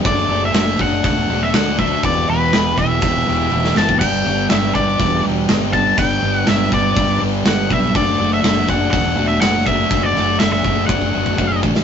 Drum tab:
CC |----------------|----------------|x---------------|----------------|
HH |o---o---o---o---|o---o---o-------|----o---o---o---|o---o---o---o---|
SD |----o-------o---|----o--------oo-|----oo------o---|----o-------o---|
T1 |----------------|------------o---|----------------|----------------|
BD |o-----o-o-----o-|o-----o-o------o|o-----o-o-----o-|o-----o-o-----o-|

CC |----------------|----------------|
HH |o---o---o---o---|o---o-----------|
SD |----o-------o---|--o-oo---------o|
T1 |----------------|----------------|
BD |o-----o-o-----o-|o-----o-oo-oo-o-|